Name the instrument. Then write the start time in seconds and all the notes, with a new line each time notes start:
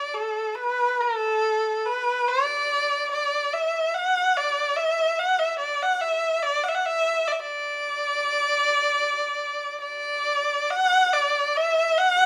erhu
Already playing: D5
0.14 A4
0.55 B4
1.01 A4
1.86 B4
2.28 D5
3.11 D5
3.53 E5
3.95 F#5
4.36 D5
4.76 E5
5.20 F#5
5.39 E5
5.59 D5
5.82 F#5
6.01 E5
6.43 D5
6.64 F#5
6.68 E5
6.75 F#5
6.85 E5
7.28 D5
7.32 E5
7.40 D5
9.82 D5
10.70 F#5
11.14 D5
11.57 E5
11.98 F#5